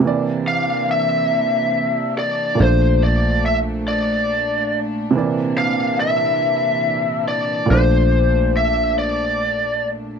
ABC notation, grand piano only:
X:1
M:6/8
L:1/8
Q:3/8=47
K:Bblyd
V:1 name="Grand piano"
[C,E,B,d]6 | [B,,A,Dc]6 | [C,E,B,d]6 | [B,,A,Dc]6 |]